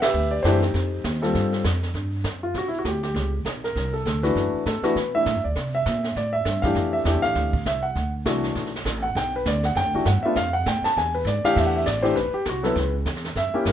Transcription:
Already playing: upright bass B1
0.02 grand piano G4 B4 E5, snare, ride
0.14 upright bass D2, brush sweep
0.31 grand piano D5
0.43 upright bass F#2, grand piano E3 A3 D4 G4 C5, kick, snare, hi-hat pedal
0.62 grand piano C4 D#4, snare
0.74 upright bass F2, brush sweep, kick, snare
1.04 upright bass D#2, kick, snare, hi-hat pedal
1.22 grand piano G3 C4 F4 A4, snare
1.34 upright bass G2, brush sweep, kick, snare
1.53 snare
1.64 upright bass F2, kick, snare, hi-hat pedal
1.83 snare
1.94 upright bass G2, brush sweep, kick, snare
2.24 upright bass F#2, kick, snare, hi-hat pedal
2.43 grand piano F4
2.54 upright bass B1, grand piano F#4, brush sweep, kick, snare
2.68 grand piano E4
2.79 grand piano F#4
2.85 upright bass D2, grand piano G4, kick, snare, hi-hat pedal
3.03 grand piano G4, snare
3.14 upright bass C#2, brush sweep, kick, snare
3.45 upright bass B1, kick, snare, hi-hat pedal
3.64 grand piano A#4, snare
3.75 upright bass C2, brush sweep, kick, snare
3.94 grand piano A4
4.05 upright bass D2, kick, snare, hi-hat pedal
4.23 grand piano E3 A3 D4 F#4 B4, snare
4.35 upright bass F#2, brush sweep, kick, snare
4.53 muted upright bass stroke
4.66 upright bass A2, grand piano A4, kick, snare, hi-hat pedal
4.82 grand piano E3 A3 D4 F#4 B4, muted upright bass stroke, snare
4.95 upright bass B2, brush sweep, kick, snare
5.14 grand piano E3 A3 D4 E4 E5
5.26 upright bass A2, kick, snare, hi-hat pedal
5.35 upright bass F#2
5.44 upright bass D2, grand piano D5
5.55 upright bass C3, brush sweep, kick, snare
5.75 grand piano E5
5.86 upright bass A#2, kick, snare, hi-hat pedal
6.04 snare
6.16 upright bass A2, grand piano D5, brush sweep, kick, snare
6.33 grand piano E5
6.45 upright bass G2, kick, snare, hi-hat pedal
6.62 grand piano E3 A3 D4 G4 F5, kick, snare
6.75 upright bass F2, brush sweep, kick, snare
6.93 grand piano E5
7.05 upright bass E2, grand piano E3 A3 D4 G4, kick, snare, hi-hat pedal
7.15 upright bass C2
7.22 upright bass A1, grand piano F5, snare
7.35 upright bass D2, brush sweep, kick, snare
7.53 kick
7.66 upright bass C2, grand piano E5, kick, snare, hi-hat pedal
7.83 grand piano F#5
7.95 upright bass D2, brush sweep, kick, snare
8.25 upright bass C2, grand piano E3 A3 D4 F#4, kick, snare, hi-hat pedal
8.43 snare
8.55 upright bass B1, brush sweep, kick, snare
8.66 snare
8.76 snare
8.85 upright bass A1, kick, snare, hi-hat pedal
9.03 grand piano F#5
9.15 upright bass B1, grand piano G5, brush sweep, kick, snare
9.36 grand piano B4
9.46 upright bass D2, grand piano D5, kick, snare, hi-hat pedal
9.63 grand piano F#5, snare
9.75 upright bass F#2, grand piano G5, brush sweep, kick, snare
9.84 upright bass D2
9.94 upright bass B1, grand piano E3 A3 D4 F#4
10.05 upright bass G2, grand piano F#5, kick, snare, hi-hat pedal
10.22 grand piano A3 B3 D4 F4 E5, muted upright bass stroke
10.36 upright bass F2, grand piano F5, brush sweep, kick, snare
10.53 grand piano F#5
10.66 upright bass A2, grand piano G5, kick, snare, hi-hat pedal
10.82 grand piano A5, muted upright bass stroke, snare
10.97 upright bass E2, grand piano G#5, brush sweep, kick, snare
11.15 grand piano B4
11.25 upright bass G#2, grand piano D5, snare, hi-hat pedal
11.44 grand piano E3 A3 D4 G4 F5, muted upright bass stroke, snare
11.56 upright bass E2, grand piano E5, brush sweep, kick, snare, crash
11.67 grand piano F#5
11.76 grand piano E5
11.86 upright bass A1, grand piano D5, kick, snare, hi-hat pedal
12.03 grand piano E3 A3 D4 G4 C5, snare
12.16 upright bass B1, grand piano B4, brush sweep, kick, snare
12.33 grand piano G4, muted upright bass stroke
12.45 upright bass C2, grand piano F#4, kick, snare, hi-hat pedal
12.63 grand piano F#3 B3 E4 A4 B4, snare
12.76 upright bass C#2, brush sweep, kick, snare
13.06 upright bass E2, kick, snare, hi-hat pedal
13.16 snare
13.24 snare
13.26 snare
13.35 upright bass F#2, grand piano E5, brush sweep, kick, snare
13.53 grand piano A#3 C#4 E4 G4, muted upright bass stroke
13.65 upright bass G2, grand piano A#4, kick, snare, hi-hat pedal

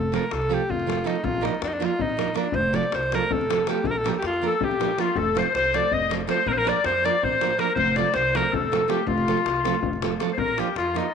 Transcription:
Already playing: upright bass F1, alto saxophone A4
0.12 nylon-string guitar F3 A3 C4 F4 A4, alto saxophone A#4, davul high
0.23 davul high
0.31 upright bass C2, alto saxophone A4, davul high
0.42 davul high
0.49 nylon-string guitar F3 A3 C4 F4 A4
0.54 alto saxophone G4
0.69 upright bass F1, alto saxophone F4, davul low
0.80 davul high
0.86 nylon-string guitar F3 A3 C4 F4 A4, davul high
0.99 davul high
1.04 nylon-string guitar F3 A3 C4 F4 A4, alto saxophone D#4, davul high
1.16 davul high
1.24 upright bass A#1, alto saxophone F4, davul low
1.41 nylon-string guitar F3 A#3 D4 F4 A#4, alto saxophone D#4, davul high
1.55 davul high
1.62 upright bass F2, alto saxophone D4, davul high
1.68 alto saxophone D#4
1.72 alto saxophone D4, davul high
1.80 nylon-string guitar F3 A#3 D4 F4 A#4, davul high
1.85 alto saxophone F4
1.99 upright bass A#1, alto saxophone D#4, davul low
2.10 davul high
2.17 nylon-string guitar F3 A#3 D4 F4 A#4, davul high
2.28 davul high
2.34 nylon-string guitar F3 A#3 D4 F4 A#4, alto saxophone D4, davul high
2.44 davul high
2.52 upright bass F1, alto saxophone C5, davul low
2.73 nylon-string guitar F3 A3 C4 F4 A4, alto saxophone D5, davul high
2.83 davul high
2.92 upright bass C2, alto saxophone C5, davul high
3.03 davul high
3.12 nylon-string guitar F3 A3 C4 F4 A4, alto saxophone A#4, davul high
3.31 upright bass F1, alto saxophone A4, davul low
3.41 davul high
3.50 nylon-string guitar F3 A3 C4 F4 A4, davul high
3.59 davul high
3.67 nylon-string guitar F3 A3 C4 F4 A4, alto saxophone G4, davul high
3.84 upright bass A#1, alto saxophone A4, davul low
3.91 alto saxophone A#4
3.95 alto saxophone A4, davul high
4.04 nylon-string guitar F3 A#3 D4 F4 A#4, davul high
4.09 alto saxophone G4 A4
4.14 alto saxophone G4, davul high
4.22 upright bass F2, davul high
4.27 alto saxophone F4
4.34 davul high
4.42 nylon-string guitar F3 A#3 D4 F4 A#4
4.46 alto saxophone A4, clarinet A4
4.52 davul high
4.61 upright bass A#1, clarinet G4, alto saxophone G4, davul low
4.71 davul high
4.80 nylon-string guitar F3 A#3 D4 F4 A#4, davul high
4.89 davul high
4.98 nylon-string guitar F3 A#3 D4 F4 A#4, clarinet F4, alto saxophone F4, davul high
5.07 davul high
5.16 upright bass F1, alto saxophone A4, clarinet A4, davul low
5.35 nylon-string guitar F3 A3 C4 F4 A4, clarinet C5, alto saxophone C5, davul high
5.45 davul high
5.54 upright bass C2, alto saxophone C5, clarinet C5, davul high
5.64 davul high
5.73 nylon-string guitar F3 A3 C4 F4 A4, alto saxophone D5, clarinet D5, davul high
5.91 upright bass F1, alto saxophone D#5, clarinet D#5, davul low
6.02 davul high
6.09 nylon-string guitar F3 A3 C4 F4 A4, davul high
6.21 davul high
6.27 nylon-string guitar F3 A3 C4 F4 A4, alto saxophone C5, clarinet C5, davul high
6.37 davul high
6.46 upright bass A#1, clarinet A#4, alto saxophone A#4, davul low
6.51 clarinet C5, alto saxophone C5
6.56 clarinet A#4, alto saxophone A#4
6.65 nylon-string guitar F3 A#3 D4 F4 A#4, alto saxophone D5, davul high
6.69 clarinet D5
6.76 davul high
6.84 upright bass F2, alto saxophone C5, clarinet C5, davul high
6.95 davul high
7.04 nylon-string guitar F3 A#3 D4 F4 A#4, clarinet D5, alto saxophone D5, davul high
7.23 upright bass A#1, clarinet C5, alto saxophone C5, davul low
7.33 davul high
7.41 nylon-string guitar F3 A#3 D4 F4 A#4, davul high
7.51 davul high
7.58 nylon-string guitar F3 A#3 D4 F4 A#4, clarinet A#4, alto saxophone A#4, davul high
7.68 davul high
7.75 upright bass F1, alto saxophone C5, clarinet C5, davul low
7.96 nylon-string guitar F3 A3 C4 F4 A4, alto saxophone D5, clarinet D5, davul high
8.05 davul high
8.14 upright bass C2, alto saxophone C5, clarinet C5, davul high
8.25 davul high
8.35 nylon-string guitar F3 A3 C4 F4 A4, alto saxophone A#4, clarinet A#4, davul high
8.52 upright bass F1, clarinet A4, alto saxophone A4, davul low
8.72 nylon-string guitar F3 A3 C4 F4 A4, davul high
8.88 nylon-string guitar F3 A3 C4 F4 A4, clarinet G4, alto saxophone G4, davul high
8.99 davul high
9.07 upright bass F1, alto saxophone F4, clarinet F4, davul low
9.18 davul high
9.28 nylon-string guitar F3 A3 C4 F4 A4, davul high
9.37 davul high
9.46 upright bass C2, davul high
9.56 davul high
9.65 nylon-string guitar F3 A3 C4 F4 A4, davul high
9.75 davul high
9.83 upright bass F1, davul low
9.93 davul high
10.02 nylon-string guitar F3 A3 C4 F4 A4, davul high
10.12 davul high
10.20 nylon-string guitar F3 A3 C4 F4 A4, davul high
10.30 clarinet C5, davul high
10.34 upright bass A#1, alto saxophone C5, davul low
10.38 alto saxophone A#4, clarinet A#4
10.48 davul high
10.57 nylon-string guitar F3 A#3 D4 F4, clarinet G4, alto saxophone G4, davul high
10.67 davul high
10.76 upright bass F2, clarinet F4, alto saxophone F4, davul high
10.94 nylon-string guitar F3 A#3 D4 F4, clarinet D#4, alto saxophone D#4, davul high

